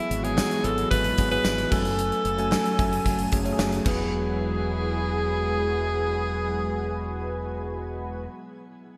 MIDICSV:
0, 0, Header, 1, 7, 480
1, 0, Start_track
1, 0, Key_signature, 4, "major"
1, 0, Tempo, 535714
1, 1777, Time_signature, 4, 2, 24, 8
1, 8041, End_track
2, 0, Start_track
2, 0, Title_t, "Alto saxophone"
2, 0, Program_c, 0, 65
2, 0, Note_on_c, 0, 64, 103
2, 214, Note_on_c, 0, 68, 97
2, 227, Note_off_c, 0, 64, 0
2, 580, Note_on_c, 0, 69, 105
2, 594, Note_off_c, 0, 68, 0
2, 806, Note_off_c, 0, 69, 0
2, 811, Note_on_c, 0, 71, 107
2, 1149, Note_off_c, 0, 71, 0
2, 1176, Note_on_c, 0, 71, 106
2, 1536, Note_on_c, 0, 69, 102
2, 1549, Note_off_c, 0, 71, 0
2, 3216, Note_off_c, 0, 69, 0
2, 3458, Note_on_c, 0, 68, 96
2, 7406, Note_off_c, 0, 68, 0
2, 8041, End_track
3, 0, Start_track
3, 0, Title_t, "Analog polysynth"
3, 0, Program_c, 1, 90
3, 3456, Note_on_c, 1, 56, 85
3, 3456, Note_on_c, 1, 71, 95
3, 3457, Note_on_c, 1, 66, 84
3, 7403, Note_off_c, 1, 56, 0
3, 7404, Note_off_c, 1, 71, 0
3, 7405, Note_off_c, 1, 66, 0
3, 8041, End_track
4, 0, Start_track
4, 0, Title_t, "Tine electric piano"
4, 0, Program_c, 2, 4
4, 0, Control_c, 2, 64, 127
4, 0, Note_on_c, 2, 54, 92
4, 0, Note_on_c, 2, 59, 80
4, 0, Note_on_c, 2, 64, 90
4, 0, Note_on_c, 2, 68, 103
4, 156, Note_off_c, 2, 54, 0
4, 157, Note_off_c, 2, 59, 0
4, 159, Note_off_c, 2, 64, 0
4, 160, Note_off_c, 2, 68, 0
4, 211, Note_on_c, 2, 54, 75
4, 214, Note_on_c, 2, 59, 74
4, 219, Note_on_c, 2, 64, 72
4, 223, Note_on_c, 2, 68, 82
4, 539, Note_off_c, 2, 54, 0
4, 540, Note_off_c, 2, 59, 0
4, 543, Note_off_c, 2, 64, 0
4, 545, Note_off_c, 2, 68, 0
4, 567, Note_on_c, 2, 54, 76
4, 571, Note_on_c, 2, 59, 65
4, 575, Note_on_c, 2, 64, 67
4, 578, Note_on_c, 2, 68, 80
4, 1005, Note_off_c, 2, 54, 0
4, 1007, Note_off_c, 2, 59, 0
4, 1009, Note_off_c, 2, 64, 0
4, 1011, Note_off_c, 2, 68, 0
4, 1052, Note_on_c, 2, 54, 72
4, 1056, Note_on_c, 2, 59, 70
4, 1061, Note_on_c, 2, 64, 67
4, 1065, Note_on_c, 2, 68, 79
4, 1163, Note_off_c, 2, 54, 0
4, 1165, Note_off_c, 2, 59, 0
4, 1167, Note_off_c, 2, 64, 0
4, 1169, Note_off_c, 2, 68, 0
4, 1173, Note_on_c, 2, 54, 76
4, 1179, Note_on_c, 2, 59, 69
4, 1179, Note_on_c, 2, 64, 72
4, 1184, Note_on_c, 2, 68, 90
4, 1520, Note_off_c, 2, 54, 0
4, 1531, Note_on_c, 2, 54, 77
4, 1535, Note_on_c, 2, 57, 73
4, 1538, Note_off_c, 2, 59, 0
4, 1538, Note_off_c, 2, 64, 0
4, 1540, Note_off_c, 2, 68, 0
4, 1540, Note_on_c, 2, 61, 70
4, 1543, Note_on_c, 2, 80, 82
4, 1550, Control_c, 2, 64, 0
4, 1712, Control_c, 2, 64, 127
4, 2075, Note_off_c, 2, 54, 0
4, 2077, Note_off_c, 2, 57, 0
4, 2080, Note_off_c, 2, 61, 0
4, 2081, Note_off_c, 2, 80, 0
4, 2131, Note_on_c, 2, 54, 94
4, 2137, Note_on_c, 2, 57, 83
4, 2139, Note_on_c, 2, 61, 78
4, 2146, Note_on_c, 2, 80, 98
4, 2459, Note_off_c, 2, 54, 0
4, 2461, Note_off_c, 2, 57, 0
4, 2463, Note_off_c, 2, 61, 0
4, 2466, Note_off_c, 2, 80, 0
4, 2494, Note_on_c, 2, 54, 79
4, 2497, Note_on_c, 2, 57, 79
4, 2501, Note_on_c, 2, 61, 75
4, 2504, Note_on_c, 2, 80, 95
4, 2928, Note_off_c, 2, 54, 0
4, 2930, Note_off_c, 2, 57, 0
4, 2932, Note_off_c, 2, 61, 0
4, 2933, Note_off_c, 2, 80, 0
4, 2971, Note_on_c, 2, 54, 86
4, 2975, Note_on_c, 2, 57, 80
4, 2978, Note_on_c, 2, 61, 80
4, 2980, Note_on_c, 2, 68, 97
4, 3077, Note_off_c, 2, 54, 0
4, 3082, Note_off_c, 2, 57, 0
4, 3086, Note_off_c, 2, 61, 0
4, 3087, Note_off_c, 2, 68, 0
4, 3087, Note_on_c, 2, 54, 93
4, 3093, Note_on_c, 2, 57, 82
4, 3097, Note_on_c, 2, 61, 83
4, 3099, Note_on_c, 2, 66, 77
4, 3156, Note_off_c, 2, 66, 0
4, 3158, Note_on_c, 2, 68, 101
4, 3424, Note_off_c, 2, 54, 0
4, 3435, Note_on_c, 2, 54, 78
4, 3449, Note_on_c, 2, 59, 76
4, 3455, Note_off_c, 2, 57, 0
4, 3457, Note_off_c, 2, 61, 0
4, 3463, Note_on_c, 2, 64, 72
4, 3467, Note_off_c, 2, 68, 0
4, 3468, Control_c, 2, 64, 0
4, 3478, Note_on_c, 2, 68, 87
4, 3563, Control_c, 2, 64, 127
4, 3709, Control_c, 2, 64, 0
4, 3879, Control_c, 2, 64, 127
4, 7383, Note_off_c, 2, 54, 0
4, 7397, Note_off_c, 2, 59, 0
4, 7411, Note_off_c, 2, 64, 0
4, 7426, Note_off_c, 2, 68, 0
4, 8041, End_track
5, 0, Start_track
5, 0, Title_t, "String machine"
5, 0, Program_c, 3, 50
5, 0, Note_on_c, 3, 52, 80
5, 0, Note_on_c, 3, 56, 77
5, 0, Note_on_c, 3, 66, 94
5, 1520, Note_off_c, 3, 52, 0
5, 1521, Note_off_c, 3, 56, 0
5, 1522, Note_off_c, 3, 66, 0
5, 1540, Note_on_c, 3, 54, 83
5, 1542, Note_on_c, 3, 57, 76
5, 1542, Note_on_c, 3, 80, 91
5, 3439, Note_off_c, 3, 54, 0
5, 3440, Note_off_c, 3, 57, 0
5, 3440, Note_off_c, 3, 80, 0
5, 3459, Note_on_c, 3, 68, 90
5, 3461, Note_on_c, 3, 64, 72
5, 3463, Note_on_c, 3, 54, 83
5, 7407, Note_off_c, 3, 68, 0
5, 7409, Note_off_c, 3, 64, 0
5, 7410, Note_off_c, 3, 54, 0
5, 8041, End_track
6, 0, Start_track
6, 0, Title_t, "Fingered electric bass"
6, 0, Program_c, 4, 33
6, 94, Note_on_c, 4, 32, 97
6, 354, Note_off_c, 4, 32, 0
6, 575, Note_on_c, 4, 32, 97
6, 749, Note_off_c, 4, 32, 0
6, 817, Note_on_c, 4, 32, 98
6, 990, Note_off_c, 4, 32, 0
6, 1061, Note_on_c, 4, 32, 102
6, 1233, Note_off_c, 4, 32, 0
6, 1294, Note_on_c, 4, 32, 106
6, 1468, Note_off_c, 4, 32, 0
6, 1539, Note_on_c, 4, 30, 97
6, 1884, Note_off_c, 4, 30, 0
6, 2016, Note_on_c, 4, 30, 95
6, 2275, Note_off_c, 4, 30, 0
6, 2500, Note_on_c, 4, 30, 86
6, 2672, Note_off_c, 4, 30, 0
6, 2736, Note_on_c, 4, 30, 105
6, 2909, Note_off_c, 4, 30, 0
6, 2979, Note_on_c, 4, 30, 92
6, 3151, Note_off_c, 4, 30, 0
6, 3216, Note_on_c, 4, 30, 101
6, 3389, Note_off_c, 4, 30, 0
6, 3456, Note_on_c, 4, 28, 91
6, 7403, Note_off_c, 4, 28, 0
6, 8041, End_track
7, 0, Start_track
7, 0, Title_t, "Drums"
7, 99, Note_on_c, 9, 42, 69
7, 189, Note_off_c, 9, 42, 0
7, 220, Note_on_c, 9, 42, 52
7, 309, Note_off_c, 9, 42, 0
7, 338, Note_on_c, 9, 38, 103
7, 340, Note_on_c, 9, 39, 78
7, 340, Note_on_c, 9, 54, 65
7, 428, Note_off_c, 9, 38, 0
7, 430, Note_off_c, 9, 39, 0
7, 430, Note_off_c, 9, 54, 0
7, 459, Note_on_c, 9, 42, 47
7, 549, Note_off_c, 9, 42, 0
7, 577, Note_on_c, 9, 42, 77
7, 579, Note_on_c, 9, 39, 69
7, 666, Note_off_c, 9, 42, 0
7, 668, Note_off_c, 9, 39, 0
7, 698, Note_on_c, 9, 42, 57
7, 788, Note_off_c, 9, 42, 0
7, 818, Note_on_c, 9, 36, 87
7, 818, Note_on_c, 9, 42, 83
7, 908, Note_off_c, 9, 36, 0
7, 908, Note_off_c, 9, 42, 0
7, 935, Note_on_c, 9, 42, 57
7, 1024, Note_off_c, 9, 42, 0
7, 1055, Note_on_c, 9, 42, 70
7, 1061, Note_on_c, 9, 36, 98
7, 1145, Note_off_c, 9, 42, 0
7, 1150, Note_off_c, 9, 36, 0
7, 1179, Note_on_c, 9, 42, 49
7, 1268, Note_off_c, 9, 42, 0
7, 1296, Note_on_c, 9, 38, 103
7, 1297, Note_on_c, 9, 54, 62
7, 1301, Note_on_c, 9, 39, 82
7, 1386, Note_off_c, 9, 38, 0
7, 1387, Note_off_c, 9, 54, 0
7, 1391, Note_off_c, 9, 39, 0
7, 1418, Note_on_c, 9, 42, 56
7, 1507, Note_off_c, 9, 42, 0
7, 1539, Note_on_c, 9, 36, 103
7, 1539, Note_on_c, 9, 49, 75
7, 1629, Note_off_c, 9, 36, 0
7, 1629, Note_off_c, 9, 49, 0
7, 1660, Note_on_c, 9, 42, 54
7, 1749, Note_off_c, 9, 42, 0
7, 1781, Note_on_c, 9, 42, 84
7, 1870, Note_off_c, 9, 42, 0
7, 1901, Note_on_c, 9, 42, 49
7, 1991, Note_off_c, 9, 42, 0
7, 2016, Note_on_c, 9, 42, 71
7, 2106, Note_off_c, 9, 42, 0
7, 2137, Note_on_c, 9, 42, 53
7, 2226, Note_off_c, 9, 42, 0
7, 2258, Note_on_c, 9, 38, 102
7, 2258, Note_on_c, 9, 39, 84
7, 2348, Note_off_c, 9, 38, 0
7, 2348, Note_off_c, 9, 39, 0
7, 2379, Note_on_c, 9, 42, 49
7, 2469, Note_off_c, 9, 42, 0
7, 2500, Note_on_c, 9, 36, 94
7, 2500, Note_on_c, 9, 42, 77
7, 2589, Note_off_c, 9, 36, 0
7, 2589, Note_off_c, 9, 42, 0
7, 2622, Note_on_c, 9, 42, 55
7, 2712, Note_off_c, 9, 42, 0
7, 2739, Note_on_c, 9, 36, 88
7, 2740, Note_on_c, 9, 42, 88
7, 2828, Note_off_c, 9, 36, 0
7, 2829, Note_off_c, 9, 42, 0
7, 2855, Note_on_c, 9, 42, 57
7, 2945, Note_off_c, 9, 42, 0
7, 2973, Note_on_c, 9, 42, 68
7, 2980, Note_on_c, 9, 36, 93
7, 3062, Note_off_c, 9, 42, 0
7, 3069, Note_off_c, 9, 36, 0
7, 3095, Note_on_c, 9, 42, 50
7, 3185, Note_off_c, 9, 42, 0
7, 3217, Note_on_c, 9, 38, 101
7, 3220, Note_on_c, 9, 39, 82
7, 3307, Note_off_c, 9, 38, 0
7, 3310, Note_off_c, 9, 39, 0
7, 3337, Note_on_c, 9, 42, 52
7, 3427, Note_off_c, 9, 42, 0
7, 3455, Note_on_c, 9, 57, 84
7, 3456, Note_on_c, 9, 39, 82
7, 3457, Note_on_c, 9, 36, 98
7, 3544, Note_off_c, 9, 57, 0
7, 3545, Note_off_c, 9, 39, 0
7, 3547, Note_off_c, 9, 36, 0
7, 8041, End_track
0, 0, End_of_file